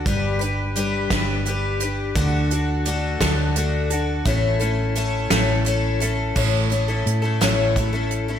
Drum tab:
CC |------|------|------|x-----|
HH |xxxxxx|xxxxxx|xxxxxx|-xxxxx|
SD |---o--|---o--|---o--|---o--|
BD |o--o--|o--o--|o-----|o---o-|